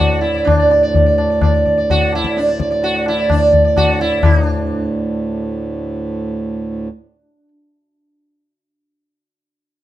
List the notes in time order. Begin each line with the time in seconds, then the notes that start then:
Already playing: D2 A2 F#4 D5
0.00 tabla na, tabla ge
0.12 D5
0.21 E4, tabla te
0.34 D5
0.45 D4, tabla na, tabla ge
0.59 D5
0.70 D5, tabla te
0.83 D5
0.95 D5, tabla tin, tabla ge
1.06 D5
1.18 D5, tabla na
1.30 D5
1.42 D5, tabla na, tabla ge
1.54 D5
1.65 D5, tabla ge
1.78 D5
1.90 F#4, tabla tin, tabla ge
2.02 D5
2.13 E4, tabla na
2.24 D5, tabla ke
2.37 D4, tabla te
2.48 D5, tabla te
2.59 D5, tabla ke
2.71 D5, tabla te
2.83 F#4, tabla tin
2.95 D5
3.06 E4, tabla na
3.18 D5
3.30 D4, tabla na, tabla ge
3.41 D5
3.52 D5, tabla ge
3.64 D5
3.77 F#4, tabla na, tabla ge
3.88 D5
4.00 E4, tabla te
4.12 D5
4.22 D2 A2 D#4, tabla na, tabla ge
4.46 D4